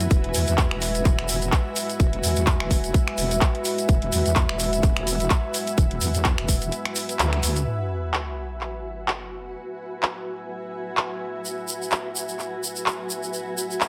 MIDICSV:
0, 0, Header, 1, 6, 480
1, 0, Start_track
1, 0, Key_signature, 3, "minor"
1, 0, Tempo, 472441
1, 110, Time_signature, 4, 2, 24, 8
1, 14104, End_track
2, 0, Start_track
2, 0, Title_t, "Ambient pad"
2, 0, Program_c, 0, 92
2, 0, Note_on_c, 0, 66, 80
2, 0, Note_on_c, 0, 71, 75
2, 0, Note_on_c, 0, 76, 79
2, 0, Note_on_c, 0, 80, 87
2, 7778, Note_off_c, 0, 66, 0
2, 7790, Note_off_c, 0, 71, 0
2, 7790, Note_off_c, 0, 76, 0
2, 7790, Note_off_c, 0, 80, 0
2, 7790, Note_on_c, 0, 66, 81
2, 8127, Note_on_c, 0, 71, 80
2, 8725, Note_on_c, 0, 76, 69
2, 8932, Note_on_c, 0, 80, 84
2, 14104, Note_off_c, 0, 66, 0
2, 14104, Note_off_c, 0, 71, 0
2, 14104, Note_off_c, 0, 76, 0
2, 14104, Note_off_c, 0, 80, 0
2, 14104, End_track
3, 0, Start_track
3, 0, Title_t, "Analog synth pad"
3, 0, Program_c, 1, 89
3, 110, Note_on_c, 1, 56, 74
3, 110, Note_on_c, 1, 66, 71
3, 110, Note_on_c, 1, 76, 84
3, 7749, Note_off_c, 1, 56, 0
3, 7749, Note_off_c, 1, 66, 0
3, 7749, Note_off_c, 1, 76, 0
3, 7790, Note_on_c, 1, 66, 66
3, 7790, Note_on_c, 1, 76, 79
3, 7791, Note_on_c, 1, 57, 72
3, 14104, Note_off_c, 1, 57, 0
3, 14104, Note_off_c, 1, 66, 0
3, 14104, Note_off_c, 1, 76, 0
3, 14104, End_track
4, 0, Start_track
4, 0, Title_t, "Wobble bass"
4, 0, Program_c, 2, 39
4, 110, Note_on_c, 2, 28, 96
4, 333, Note_off_c, 2, 28, 0
4, 350, Note_on_c, 2, 40, 96
4, 703, Note_off_c, 2, 40, 0
4, 724, Note_on_c, 2, 28, 95
4, 1053, Note_off_c, 2, 28, 0
4, 1070, Note_on_c, 2, 28, 98
4, 1183, Note_off_c, 2, 28, 0
4, 1204, Note_on_c, 2, 28, 96
4, 1533, Note_off_c, 2, 28, 0
4, 2030, Note_on_c, 2, 28, 93
4, 2253, Note_off_c, 2, 28, 0
4, 2270, Note_on_c, 2, 40, 96
4, 2623, Note_off_c, 2, 40, 0
4, 2644, Note_on_c, 2, 28, 101
4, 2973, Note_off_c, 2, 28, 0
4, 3229, Note_on_c, 2, 28, 97
4, 3453, Note_off_c, 2, 28, 0
4, 3950, Note_on_c, 2, 28, 93
4, 4173, Note_off_c, 2, 28, 0
4, 4189, Note_on_c, 2, 40, 95
4, 4542, Note_off_c, 2, 40, 0
4, 4564, Note_on_c, 2, 28, 100
4, 4893, Note_off_c, 2, 28, 0
4, 4910, Note_on_c, 2, 28, 96
4, 5023, Note_off_c, 2, 28, 0
4, 5044, Note_on_c, 2, 28, 92
4, 5373, Note_off_c, 2, 28, 0
4, 5870, Note_on_c, 2, 28, 93
4, 6093, Note_off_c, 2, 28, 0
4, 6110, Note_on_c, 2, 40, 92
4, 6463, Note_off_c, 2, 40, 0
4, 6484, Note_on_c, 2, 28, 95
4, 6813, Note_off_c, 2, 28, 0
4, 7309, Note_on_c, 2, 38, 95
4, 7533, Note_off_c, 2, 38, 0
4, 7550, Note_on_c, 2, 38, 91
4, 7773, Note_off_c, 2, 38, 0
4, 14104, End_track
5, 0, Start_track
5, 0, Title_t, "Sub drop"
5, 0, Program_c, 3, 103
5, 7790, Note_on_c, 3, 60, 64
5, 9710, Note_off_c, 3, 60, 0
5, 14104, End_track
6, 0, Start_track
6, 0, Title_t, "Drums"
6, 4, Note_on_c, 9, 42, 50
6, 106, Note_off_c, 9, 42, 0
6, 106, Note_on_c, 9, 82, 38
6, 110, Note_on_c, 9, 36, 117
6, 110, Note_on_c, 9, 42, 59
6, 208, Note_off_c, 9, 82, 0
6, 211, Note_off_c, 9, 36, 0
6, 212, Note_off_c, 9, 42, 0
6, 245, Note_on_c, 9, 42, 34
6, 346, Note_off_c, 9, 42, 0
6, 347, Note_on_c, 9, 82, 91
6, 350, Note_on_c, 9, 46, 101
6, 449, Note_off_c, 9, 82, 0
6, 451, Note_off_c, 9, 46, 0
6, 479, Note_on_c, 9, 82, 50
6, 484, Note_on_c, 9, 42, 49
6, 580, Note_off_c, 9, 82, 0
6, 586, Note_off_c, 9, 42, 0
6, 587, Note_on_c, 9, 39, 111
6, 590, Note_on_c, 9, 36, 112
6, 590, Note_on_c, 9, 42, 62
6, 594, Note_on_c, 9, 82, 38
6, 688, Note_off_c, 9, 39, 0
6, 691, Note_off_c, 9, 36, 0
6, 692, Note_off_c, 9, 42, 0
6, 695, Note_off_c, 9, 82, 0
6, 725, Note_on_c, 9, 26, 80
6, 825, Note_on_c, 9, 82, 92
6, 826, Note_off_c, 9, 26, 0
6, 830, Note_on_c, 9, 46, 110
6, 927, Note_off_c, 9, 82, 0
6, 932, Note_off_c, 9, 46, 0
6, 962, Note_on_c, 9, 82, 46
6, 965, Note_on_c, 9, 42, 52
6, 1063, Note_off_c, 9, 82, 0
6, 1066, Note_off_c, 9, 42, 0
6, 1067, Note_on_c, 9, 39, 33
6, 1070, Note_on_c, 9, 36, 113
6, 1070, Note_on_c, 9, 42, 58
6, 1072, Note_on_c, 9, 82, 34
6, 1169, Note_off_c, 9, 39, 0
6, 1171, Note_off_c, 9, 36, 0
6, 1172, Note_off_c, 9, 42, 0
6, 1173, Note_off_c, 9, 82, 0
6, 1205, Note_on_c, 9, 26, 82
6, 1205, Note_on_c, 9, 42, 34
6, 1306, Note_off_c, 9, 26, 0
6, 1306, Note_off_c, 9, 42, 0
6, 1306, Note_on_c, 9, 82, 94
6, 1310, Note_on_c, 9, 46, 104
6, 1408, Note_off_c, 9, 82, 0
6, 1412, Note_off_c, 9, 46, 0
6, 1440, Note_on_c, 9, 82, 55
6, 1445, Note_on_c, 9, 42, 49
6, 1542, Note_off_c, 9, 82, 0
6, 1546, Note_off_c, 9, 42, 0
6, 1547, Note_on_c, 9, 39, 106
6, 1550, Note_on_c, 9, 36, 121
6, 1550, Note_on_c, 9, 42, 58
6, 1551, Note_on_c, 9, 82, 38
6, 1649, Note_off_c, 9, 39, 0
6, 1651, Note_off_c, 9, 36, 0
6, 1652, Note_off_c, 9, 42, 0
6, 1653, Note_off_c, 9, 82, 0
6, 1788, Note_on_c, 9, 82, 95
6, 1790, Note_on_c, 9, 46, 106
6, 1889, Note_off_c, 9, 82, 0
6, 1892, Note_off_c, 9, 46, 0
6, 1925, Note_on_c, 9, 42, 50
6, 1925, Note_on_c, 9, 82, 45
6, 2026, Note_off_c, 9, 82, 0
6, 2027, Note_off_c, 9, 42, 0
6, 2030, Note_on_c, 9, 36, 113
6, 2031, Note_on_c, 9, 42, 60
6, 2031, Note_on_c, 9, 82, 35
6, 2131, Note_off_c, 9, 36, 0
6, 2133, Note_off_c, 9, 42, 0
6, 2133, Note_off_c, 9, 82, 0
6, 2165, Note_on_c, 9, 42, 37
6, 2267, Note_off_c, 9, 42, 0
6, 2271, Note_on_c, 9, 46, 95
6, 2273, Note_on_c, 9, 82, 82
6, 2372, Note_off_c, 9, 46, 0
6, 2374, Note_off_c, 9, 82, 0
6, 2397, Note_on_c, 9, 82, 52
6, 2405, Note_on_c, 9, 42, 51
6, 2499, Note_off_c, 9, 82, 0
6, 2505, Note_on_c, 9, 82, 40
6, 2507, Note_off_c, 9, 42, 0
6, 2507, Note_on_c, 9, 39, 113
6, 2510, Note_on_c, 9, 36, 115
6, 2510, Note_on_c, 9, 42, 65
6, 2607, Note_off_c, 9, 82, 0
6, 2609, Note_off_c, 9, 39, 0
6, 2611, Note_off_c, 9, 36, 0
6, 2612, Note_off_c, 9, 42, 0
6, 2645, Note_on_c, 9, 26, 82
6, 2747, Note_off_c, 9, 26, 0
6, 2750, Note_on_c, 9, 36, 58
6, 2751, Note_on_c, 9, 46, 104
6, 2753, Note_on_c, 9, 82, 91
6, 2851, Note_off_c, 9, 36, 0
6, 2852, Note_off_c, 9, 46, 0
6, 2854, Note_off_c, 9, 82, 0
6, 2885, Note_on_c, 9, 42, 54
6, 2886, Note_on_c, 9, 82, 45
6, 2986, Note_off_c, 9, 42, 0
6, 2988, Note_off_c, 9, 82, 0
6, 2990, Note_on_c, 9, 36, 105
6, 2990, Note_on_c, 9, 42, 62
6, 2996, Note_on_c, 9, 82, 35
6, 3091, Note_off_c, 9, 36, 0
6, 3092, Note_off_c, 9, 42, 0
6, 3097, Note_off_c, 9, 82, 0
6, 3125, Note_on_c, 9, 26, 83
6, 3125, Note_on_c, 9, 42, 35
6, 3226, Note_off_c, 9, 26, 0
6, 3226, Note_off_c, 9, 42, 0
6, 3228, Note_on_c, 9, 82, 85
6, 3230, Note_on_c, 9, 46, 104
6, 3330, Note_off_c, 9, 82, 0
6, 3331, Note_off_c, 9, 46, 0
6, 3363, Note_on_c, 9, 82, 50
6, 3365, Note_on_c, 9, 42, 50
6, 3465, Note_off_c, 9, 82, 0
6, 3466, Note_off_c, 9, 42, 0
6, 3467, Note_on_c, 9, 39, 107
6, 3470, Note_on_c, 9, 36, 117
6, 3470, Note_on_c, 9, 42, 62
6, 3471, Note_on_c, 9, 82, 36
6, 3569, Note_off_c, 9, 39, 0
6, 3571, Note_off_c, 9, 36, 0
6, 3572, Note_off_c, 9, 42, 0
6, 3572, Note_off_c, 9, 82, 0
6, 3605, Note_on_c, 9, 42, 36
6, 3706, Note_on_c, 9, 82, 77
6, 3707, Note_off_c, 9, 42, 0
6, 3711, Note_on_c, 9, 46, 99
6, 3808, Note_off_c, 9, 82, 0
6, 3812, Note_off_c, 9, 46, 0
6, 3842, Note_on_c, 9, 82, 47
6, 3845, Note_on_c, 9, 42, 51
6, 3944, Note_off_c, 9, 82, 0
6, 3947, Note_off_c, 9, 42, 0
6, 3947, Note_on_c, 9, 82, 33
6, 3950, Note_on_c, 9, 36, 114
6, 3950, Note_on_c, 9, 42, 65
6, 4049, Note_off_c, 9, 82, 0
6, 4051, Note_off_c, 9, 36, 0
6, 4052, Note_off_c, 9, 42, 0
6, 4085, Note_on_c, 9, 42, 37
6, 4186, Note_off_c, 9, 42, 0
6, 4190, Note_on_c, 9, 46, 96
6, 4191, Note_on_c, 9, 82, 81
6, 4292, Note_off_c, 9, 46, 0
6, 4293, Note_off_c, 9, 82, 0
6, 4325, Note_on_c, 9, 42, 52
6, 4326, Note_on_c, 9, 82, 46
6, 4426, Note_off_c, 9, 42, 0
6, 4427, Note_on_c, 9, 39, 117
6, 4428, Note_off_c, 9, 82, 0
6, 4429, Note_on_c, 9, 82, 38
6, 4430, Note_on_c, 9, 36, 109
6, 4430, Note_on_c, 9, 42, 66
6, 4529, Note_off_c, 9, 39, 0
6, 4531, Note_off_c, 9, 36, 0
6, 4531, Note_off_c, 9, 82, 0
6, 4532, Note_off_c, 9, 42, 0
6, 4565, Note_on_c, 9, 26, 80
6, 4666, Note_off_c, 9, 26, 0
6, 4667, Note_on_c, 9, 82, 87
6, 4670, Note_on_c, 9, 46, 102
6, 4768, Note_off_c, 9, 82, 0
6, 4772, Note_off_c, 9, 46, 0
6, 4805, Note_on_c, 9, 42, 56
6, 4808, Note_on_c, 9, 82, 45
6, 4906, Note_off_c, 9, 42, 0
6, 4907, Note_on_c, 9, 39, 33
6, 4908, Note_off_c, 9, 82, 0
6, 4908, Note_on_c, 9, 82, 38
6, 4910, Note_on_c, 9, 36, 107
6, 4910, Note_on_c, 9, 42, 65
6, 5009, Note_off_c, 9, 39, 0
6, 5009, Note_off_c, 9, 82, 0
6, 5011, Note_off_c, 9, 36, 0
6, 5012, Note_off_c, 9, 42, 0
6, 5045, Note_on_c, 9, 26, 82
6, 5045, Note_on_c, 9, 42, 35
6, 5146, Note_off_c, 9, 26, 0
6, 5146, Note_off_c, 9, 42, 0
6, 5150, Note_on_c, 9, 46, 101
6, 5159, Note_on_c, 9, 82, 84
6, 5252, Note_off_c, 9, 46, 0
6, 5261, Note_off_c, 9, 82, 0
6, 5280, Note_on_c, 9, 82, 49
6, 5285, Note_on_c, 9, 42, 52
6, 5382, Note_off_c, 9, 82, 0
6, 5386, Note_off_c, 9, 42, 0
6, 5387, Note_on_c, 9, 39, 114
6, 5389, Note_on_c, 9, 82, 36
6, 5390, Note_on_c, 9, 36, 112
6, 5390, Note_on_c, 9, 42, 63
6, 5489, Note_off_c, 9, 39, 0
6, 5491, Note_off_c, 9, 36, 0
6, 5491, Note_off_c, 9, 82, 0
6, 5492, Note_off_c, 9, 42, 0
6, 5630, Note_on_c, 9, 46, 101
6, 5631, Note_on_c, 9, 82, 86
6, 5732, Note_off_c, 9, 46, 0
6, 5732, Note_off_c, 9, 82, 0
6, 5761, Note_on_c, 9, 82, 53
6, 5764, Note_on_c, 9, 42, 52
6, 5863, Note_off_c, 9, 82, 0
6, 5866, Note_off_c, 9, 42, 0
6, 5870, Note_on_c, 9, 36, 112
6, 5870, Note_on_c, 9, 42, 66
6, 5871, Note_on_c, 9, 82, 35
6, 5971, Note_off_c, 9, 36, 0
6, 5972, Note_off_c, 9, 42, 0
6, 5972, Note_off_c, 9, 82, 0
6, 6005, Note_on_c, 9, 42, 39
6, 6106, Note_off_c, 9, 42, 0
6, 6106, Note_on_c, 9, 82, 90
6, 6110, Note_on_c, 9, 46, 95
6, 6208, Note_off_c, 9, 82, 0
6, 6211, Note_off_c, 9, 46, 0
6, 6241, Note_on_c, 9, 82, 51
6, 6244, Note_on_c, 9, 42, 55
6, 6343, Note_off_c, 9, 82, 0
6, 6346, Note_off_c, 9, 42, 0
6, 6346, Note_on_c, 9, 39, 115
6, 6349, Note_on_c, 9, 82, 36
6, 6350, Note_on_c, 9, 36, 111
6, 6350, Note_on_c, 9, 42, 69
6, 6448, Note_off_c, 9, 39, 0
6, 6451, Note_off_c, 9, 36, 0
6, 6451, Note_off_c, 9, 42, 0
6, 6451, Note_off_c, 9, 82, 0
6, 6484, Note_on_c, 9, 26, 80
6, 6484, Note_on_c, 9, 42, 38
6, 6586, Note_off_c, 9, 26, 0
6, 6586, Note_off_c, 9, 42, 0
6, 6589, Note_on_c, 9, 46, 101
6, 6590, Note_on_c, 9, 36, 57
6, 6591, Note_on_c, 9, 82, 93
6, 6691, Note_off_c, 9, 36, 0
6, 6691, Note_off_c, 9, 46, 0
6, 6693, Note_off_c, 9, 82, 0
6, 6717, Note_on_c, 9, 82, 50
6, 6724, Note_on_c, 9, 42, 57
6, 6819, Note_off_c, 9, 82, 0
6, 6825, Note_off_c, 9, 42, 0
6, 6828, Note_on_c, 9, 82, 33
6, 6830, Note_on_c, 9, 42, 66
6, 6930, Note_off_c, 9, 82, 0
6, 6931, Note_off_c, 9, 42, 0
6, 6964, Note_on_c, 9, 26, 78
6, 6964, Note_on_c, 9, 42, 36
6, 7066, Note_off_c, 9, 26, 0
6, 7066, Note_off_c, 9, 42, 0
6, 7066, Note_on_c, 9, 82, 91
6, 7070, Note_on_c, 9, 46, 100
6, 7168, Note_off_c, 9, 82, 0
6, 7171, Note_off_c, 9, 46, 0
6, 7205, Note_on_c, 9, 42, 55
6, 7210, Note_on_c, 9, 82, 52
6, 7306, Note_off_c, 9, 42, 0
6, 7307, Note_on_c, 9, 39, 116
6, 7310, Note_on_c, 9, 42, 67
6, 7312, Note_off_c, 9, 82, 0
6, 7314, Note_on_c, 9, 82, 33
6, 7409, Note_off_c, 9, 39, 0
6, 7412, Note_off_c, 9, 42, 0
6, 7415, Note_off_c, 9, 82, 0
6, 7445, Note_on_c, 9, 26, 60
6, 7445, Note_on_c, 9, 42, 39
6, 7546, Note_off_c, 9, 26, 0
6, 7546, Note_off_c, 9, 42, 0
6, 7550, Note_on_c, 9, 46, 99
6, 7552, Note_on_c, 9, 82, 92
6, 7651, Note_off_c, 9, 46, 0
6, 7654, Note_off_c, 9, 82, 0
6, 7680, Note_on_c, 9, 82, 51
6, 7685, Note_on_c, 9, 42, 55
6, 7781, Note_off_c, 9, 82, 0
6, 7786, Note_off_c, 9, 42, 0
6, 8267, Note_on_c, 9, 39, 107
6, 8369, Note_off_c, 9, 39, 0
6, 8747, Note_on_c, 9, 39, 33
6, 8849, Note_off_c, 9, 39, 0
6, 9227, Note_on_c, 9, 39, 107
6, 9328, Note_off_c, 9, 39, 0
6, 10187, Note_on_c, 9, 39, 109
6, 10289, Note_off_c, 9, 39, 0
6, 11147, Note_on_c, 9, 39, 105
6, 11249, Note_off_c, 9, 39, 0
6, 11635, Note_on_c, 9, 82, 39
6, 11737, Note_off_c, 9, 82, 0
6, 11866, Note_on_c, 9, 82, 80
6, 11968, Note_off_c, 9, 82, 0
6, 12012, Note_on_c, 9, 82, 50
6, 12100, Note_off_c, 9, 82, 0
6, 12100, Note_on_c, 9, 82, 34
6, 12107, Note_on_c, 9, 39, 109
6, 12201, Note_off_c, 9, 82, 0
6, 12209, Note_off_c, 9, 39, 0
6, 12352, Note_on_c, 9, 82, 91
6, 12453, Note_off_c, 9, 82, 0
6, 12483, Note_on_c, 9, 82, 48
6, 12584, Note_off_c, 9, 82, 0
6, 12587, Note_on_c, 9, 39, 34
6, 12590, Note_on_c, 9, 82, 36
6, 12689, Note_off_c, 9, 39, 0
6, 12692, Note_off_c, 9, 82, 0
6, 12839, Note_on_c, 9, 82, 86
6, 12940, Note_off_c, 9, 82, 0
6, 12961, Note_on_c, 9, 82, 54
6, 13063, Note_off_c, 9, 82, 0
6, 13067, Note_on_c, 9, 39, 101
6, 13078, Note_on_c, 9, 82, 36
6, 13168, Note_off_c, 9, 39, 0
6, 13179, Note_off_c, 9, 82, 0
6, 13308, Note_on_c, 9, 82, 86
6, 13410, Note_off_c, 9, 82, 0
6, 13443, Note_on_c, 9, 82, 49
6, 13545, Note_off_c, 9, 82, 0
6, 13547, Note_on_c, 9, 82, 40
6, 13649, Note_off_c, 9, 82, 0
6, 13795, Note_on_c, 9, 82, 84
6, 13896, Note_off_c, 9, 82, 0
6, 13927, Note_on_c, 9, 82, 46
6, 14027, Note_on_c, 9, 39, 102
6, 14028, Note_off_c, 9, 82, 0
6, 14031, Note_on_c, 9, 82, 37
6, 14104, Note_off_c, 9, 39, 0
6, 14104, Note_off_c, 9, 82, 0
6, 14104, End_track
0, 0, End_of_file